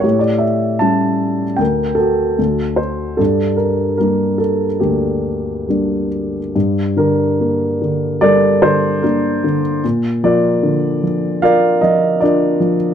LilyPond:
<<
  \new Staff \with { instrumentName = "Grand piano" } { \time 4/4 \key g \minor \tempo 4 = 74 << { cis''16 d''16 e''8 a''4 g''8 a'4 c''8 | a'8 bes'8 bes'8 a'8 g'4. r8 | r8 bes'4. d''8 c''8 bes'8. r16 | r8 d''4. f''8 ees''8 d''8. r16 | } \\ { g'2 bes'8 fis'4. | d'2 bes2 | r8 d'4. <a' bes'>4 d'4 | r8 <f' bes'>4. <bes' d''>4 <f' bes'>4 | } >> }
  \new Staff \with { instrumentName = "Grand piano" } { \clef bass \time 4/4 \key g \minor a,4 <g a cis'>4 d,4 d,4 | g,4 <g bes d'>4 d,4 <g bes d'>4 | g,8 d8 bes8 d8 g8 d8 bes8 d8 | bes,8 f8 d8 f8 f'8 f8 d'8 f8 | }
>>